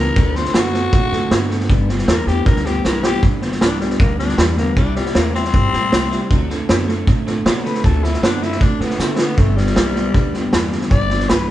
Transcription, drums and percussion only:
0.16 kick, snare
0.35 snare
0.45 snare
0.54 snare, hi-hat pedal
0.74 snare
0.92 kick, snare
1.12 snare
1.31 snare, hi-hat pedal
1.50 snare
1.60 snare
1.69 kick, snare
1.89 snare
1.98 snare
2.08 snare, hi-hat pedal
2.27 snare
2.46 kick, snare
2.56 snare
2.65 snare
2.85 snare, hi-hat pedal
3.03 snare
3.23 kick, snare
3.42 snare
3.52 snare
3.61 snare, hi-hat pedal
3.81 snare
3.90 snare
3.99 kick, snare
4.19 snare
4.29 snare
4.38 snare, hi-hat pedal
4.57 snare
4.76 kick, snare
4.95 snare
5.05 snare
5.15 snare, hi-hat pedal
5.35 snare
5.44 snare
5.54 kick, snare
5.73 snare
5.92 snare, hi-hat pedal
6.12 snare
6.30 kick, snare
6.50 snare
6.69 snare, hi-hat pedal
6.88 snare
7.07 kick, snare
7.27 snare
7.46 snare, hi-hat pedal
7.65 snare
7.75 snare
7.84 kick, snare
8.04 snare
8.14 snare
8.23 snare, hi-hat pedal
8.42 snare
8.52 snare
8.61 kick, snare
8.80 snare
8.90 snare
8.99 snare, hi-hat pedal
9.18 snare
9.38 kick, snare
9.57 snare
9.67 snare
9.76 snare, hi-hat pedal
9.96 snare
10.14 kick, snare
10.34 snare
10.53 snare, hi-hat pedal
10.72 snare
10.81 snare
10.91 kick, snare
11.10 snare
11.20 snare
11.29 snare, hi-hat pedal

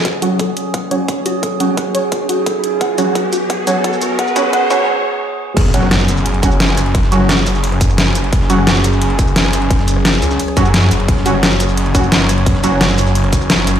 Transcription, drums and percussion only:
0.05 kick, closed hi-hat
0.22 closed hi-hat
0.39 kick, closed hi-hat
0.57 closed hi-hat
0.74 kick, closed hi-hat
0.91 closed hi-hat
1.08 kick, closed hi-hat
1.26 closed hi-hat
1.43 kick, closed hi-hat
1.60 closed hi-hat
1.77 kick, closed hi-hat
1.95 closed hi-hat
2.12 kick, closed hi-hat
2.29 closed hi-hat
2.46 kick, closed hi-hat
2.64 closed hi-hat
2.81 kick, closed hi-hat
2.98 closed hi-hat, shaker
3.15 kick, closed hi-hat
3.33 closed hi-hat, shaker
3.50 kick, closed hi-hat
3.67 closed hi-hat, shaker
3.84 kick, closed hi-hat
3.93 shaker
4.02 closed hi-hat, shaker
4.19 kick, closed hi-hat
4.27 shaker
4.36 kick, closed hi-hat, shaker
4.53 kick, closed hi-hat
4.70 kick, open hi-hat, shaker
5.57 kick, closed hi-hat, crash, ride
5.65 snare
5.74 closed hi-hat, ride, shaker
5.83 cross-stick
5.91 snare, closed hi-hat, ride
6.08 closed hi-hat, ride, shaker
6.17 shaker
6.26 closed hi-hat, ride
6.34 ride
6.43 kick, closed hi-hat, ride, shaker
6.52 shaker
6.60 snare, closed hi-hat, ride
6.69 cross-stick
6.77 cross-stick, closed hi-hat, ride, shaker
6.86 ride
6.95 kick, closed hi-hat, ride
7.03 snare
7.12 closed hi-hat, ride, shaker
7.21 cross-stick
7.29 snare, closed hi-hat, ride
7.46 open hi-hat, ride, shaker
7.55 snare, shaker
7.64 closed hi-hat, open hi-hat
7.72 cross-stick, ride
7.81 kick, closed hi-hat, ride, shaker
7.90 cross-stick, shaker
7.98 snare, closed hi-hat, ride
8.15 closed hi-hat, ride, shaker
8.24 ride
8.33 kick, closed hi-hat, ride
8.41 snare
8.50 closed hi-hat, ride, shaker
8.58 cross-stick
8.67 snare, closed hi-hat, ride
8.84 closed hi-hat, ride, shaker
8.93 shaker
9.02 closed hi-hat, ride
9.10 ride
9.19 kick, closed hi-hat, ride, shaker
9.27 shaker
9.36 snare, closed hi-hat, ride
9.45 cross-stick
9.53 cross-stick, closed hi-hat, ride, shaker
9.62 ride
9.70 kick, closed hi-hat, ride
9.79 snare
9.88 closed hi-hat, ride, shaker
9.96 cross-stick
10.05 snare, closed hi-hat, ride
10.22 open hi-hat, ride, shaker
10.31 snare, shaker
10.39 closed hi-hat, open hi-hat
10.48 cross-stick, ride
10.57 kick, closed hi-hat, ride, shaker
10.65 cross-stick, shaker
10.74 snare, closed hi-hat, ride
10.91 closed hi-hat, ride, shaker
11.00 ride
11.08 kick, closed hi-hat, ride
11.17 snare
11.26 closed hi-hat, ride, shaker
11.34 cross-stick
11.43 snare, closed hi-hat, ride
11.60 closed hi-hat, ride, shaker
11.69 shaker
11.77 closed hi-hat, ride
11.86 ride
11.95 kick, closed hi-hat, ride, shaker
12.03 shaker
12.12 snare, closed hi-hat, ride
12.21 cross-stick
12.29 cross-stick, closed hi-hat, ride, shaker
12.38 ride
12.46 kick, closed hi-hat, ride
12.55 snare
12.64 closed hi-hat, ride, shaker
12.72 cross-stick
12.81 snare, closed hi-hat, ride
12.98 open hi-hat, ride, shaker
13.07 snare, shaker
13.15 closed hi-hat, open hi-hat
13.24 cross-stick, ride
13.33 kick, closed hi-hat, ride, shaker
13.41 cross-stick, shaker
13.50 snare, closed hi-hat, ride
13.67 closed hi-hat, ride, shaker
13.76 ride

